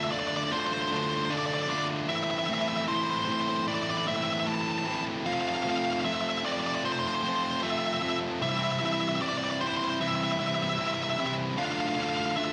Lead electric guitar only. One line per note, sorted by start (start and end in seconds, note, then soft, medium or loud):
0.04 0.11 E5 medium
0.12 0.19 D5 loud
0.19 0.27 D5 medium
0.27 0.36 D5 medium
0.37 0.43 D5 medium
0.44 0.52 D5 medium
0.52 0.59 C5 loud
0.60 0.66 C5 medium
0.66 0.73 C5 medium
0.73 0.80 C5 medium
0.81 0.87 C5 medium
0.88 0.95 C5 medium
0.96 1.03 C5 medium
1.03 1.10 C5 medium
1.10 1.17 C5 medium
1.17 1.24 C5 medium
1.25 1.32 C5 medium
1.30 1.38 D5 loud
1.38 1.46 D5 medium
1.46 1.54 D5 medium
1.54 1.62 D5 medium
1.63 1.69 D5 medium
1.70 1.78 D5 medium
1.78 1.86 D5 medium
2.09 2.16 E5 loud
2.16 2.23 E5 medium
2.24 2.30 E5 loud
2.30 2.38 E5 medium
2.38 2.46 E5 medium
2.47 2.54 E5 medium
2.54 2.61 E5 loud
2.61 2.68 E5 medium
2.68 2.76 E5 medium
2.77 2.84 E5 medium
2.88 2.95 C5 medium
2.96 3.02 C5 medium
3.03 3.10 C5 medium
3.10 3.18 C5 medium
3.18 3.24 C5 medium
3.25 3.32 C5 medium
3.32 3.40 C5 medium
3.41 3.48 C5 medium
3.49 3.56 C5 medium
3.56 3.64 C5 medium
3.68 3.74 D5 loud
3.75 3.82 D5 medium
3.83 3.90 D5 loud
3.90 3.97 D5 medium
3.97 4.04 D5 medium
4.08 4.16 E5 medium
4.16 4.24 E5 medium
4.24 4.32 E5 medium
4.33 4.39 E5 medium
4.40 4.48 E5 medium
4.47 4.54 A5 loud
4.55 4.61 A5 medium
4.61 4.69 A5 loud
4.71 4.78 A5 medium
4.78 4.86 A5 medium
4.86 4.94 A5 medium
4.95 5.02 A5 medium
5.26 5.33 F5 loud
5.33 5.41 F5 medium
5.41 5.48 F5 medium
5.48 5.56 F5 medium
5.56 5.63 F5 loud
5.63 5.69 F5 medium
5.70 5.77 F5 medium
5.77 5.84 F5 medium
5.85 5.92 F5 medium
5.93 6.00 F5 medium
6.01 6.05 F5 medium
6.05 6.13 E5 medium
6.15 6.20 E5 medium
6.21 6.29 E5 medium
6.30 6.38 E5 medium
6.38 6.45 E5 medium
6.45 6.52 D5 loud
6.52 6.60 D5 medium
6.60 6.67 D5 medium
6.67 6.74 D5 medium
6.75 6.82 D5 medium
6.85 6.92 C5 medium
6.92 6.99 C5 medium
6.99 7.07 C5 medium
7.07 7.14 C5 medium
7.15 7.21 C5 medium
7.21 7.28 C5 medium
7.29 7.36 C5 medium
7.37 7.42 C5 medium
7.43 7.50 C5 medium
7.51 7.58 C5 medium
7.60 7.67 C5 medium
7.60 7.71 E5 loud
7.71 7.79 E5 medium
7.79 7.86 E5 medium
7.86 7.93 E5 medium
7.94 8.02 E5 medium
8.02 8.10 E5 medium
8.10 8.18 E5 medium
8.42 8.49 E5 loud
8.50 8.57 E5 medium
8.58 8.64 E5 loud
8.64 8.72 E5 medium
8.72 8.79 E5 loud
8.79 8.86 E5 medium
8.86 8.93 E5 loud
8.93 9.00 E5 medium
9.01 9.08 E5 loud
9.09 9.15 E5 medium
9.16 9.21 E5 loud
9.22 9.28 D5 medium
9.28 9.36 D5 medium
9.37 9.44 D5 medium
9.44 9.50 D5 medium
9.51 9.58 D5 medium
9.61 9.67 C5 medium
9.67 9.74 C5 medium
9.76 9.83 C5 medium
9.84 9.89 C5 medium
9.89 9.97 C5 medium
10.01 10.08 E5 loud
10.08 10.15 E5 medium
10.15 10.23 E5 medium
10.24 10.31 E5 medium
10.32 10.39 E5 loud
10.40 10.47 E5 medium
10.47 10.55 E5 loud
10.55 10.62 E5 medium
10.63 10.69 E5 medium
10.70 10.78 E5 medium
10.79 10.87 E5 loud
10.87 10.94 E5 medium
10.94 11.02 E5 medium
11.04 11.10 E5 medium
11.10 11.18 E5 medium
11.20 11.26 E5 medium
11.26 11.34 E5 medium
11.58 11.65 F5 loud
11.65 11.71 F5 medium
11.72 11.79 F5 medium
11.80 11.88 F5 medium
11.89 11.94 F5 loud
11.95 12.02 F5 medium
12.03 12.09 F5 medium
12.09 12.16 F5 medium
12.17 12.24 F5 loud
12.26 12.31 F5 medium
12.31 12.36 F5 medium
12.37 12.44 E5 loud
12.45 12.53 E5 medium